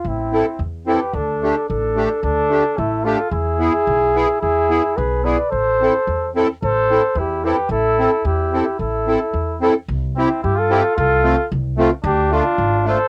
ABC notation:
X:1
M:2/4
L:1/16
Q:1/4=110
K:Am
V:1 name="Flugelhorn"
E4 z2 B2 | A4 A4 | A4 E2 A2 | ^G8 |
^G4 B2 d2 | c6 z2 | c4 G2 B2 | A4 G4 |
A6 z2 | [K:C] z2 E2 G A3 | A4 z4 | G2 F4 c2 |]
V:2 name="Accordion"
z2 [CEA]2 z2 [CEA]2 | z2 [A,DG]2 z2 [A,DG]2 | z2 [A,DG]2 z2 [A,DG]2 | z2 [B,E^G]2 z2 [B,EG]2 |
z2 [B,E^G]2 z2 [B,EG]2 | z2 [CEA]2 z2 [CEA]2 | z2 [CEA]2 z2 [CEA]2 | z2 [CEA]2 z2 [CEA]2 |
z2 [CEA]2 z2 [CEA]2 | [K:C] z2 [CEG]2 z2 [CEG]2 | z2 [A,CF]2 z2 [A,CF]2 | z2 [A,DF]2 z2 [A,DF]2 |]
V:3 name="Trumpet"
C4 z2 G2 | D4 D4 | D4 A,2 F2 | E8 |
E4 ^G2 B2 | A6 z2 | A4 E2 G2 | E4 E4 |
E6 z2 | [K:C] z2 C2 E F3 | F4 z4 | D2 D4 A2 |]
V:4 name="Upright bass" clef=bass
A,,,4 E,,4 | D,,4 A,,,4 | D,,4 A,,,4 | E,,4 B,,,4 |
E,,4 B,,,4 | A,,,4 E,,4 | A,,,4 E,,4 | A,,,4 E,,4 |
A,,,4 E,,4 | [K:C] C,,4 G,,4 | C,,4 C,,4 | D,,4 _A,,,4 |]